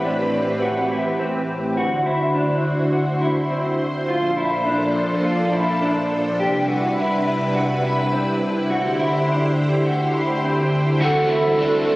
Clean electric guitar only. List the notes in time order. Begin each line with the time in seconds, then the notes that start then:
0.05 D4
0.62 F#4
0.91 E4
1.19 C4
1.77 F#4
2.06 E4
2.35 D4
2.93 F#4
3.21 E4
3.50 C4
4.08 F4
4.37 E4
4.66 D4
5.24 F4
5.53 E4
5.82 D4
6.40 G4
6.68 F#4
6.98 E4
7.55 F#4
7.84 E4
8.12 C4
8.70 F#4
8.99 E4
9.28 D4
9.85 F#4
10.14 E4
10.43 C4
11.01 F#4
11.30 E4
11.59 D4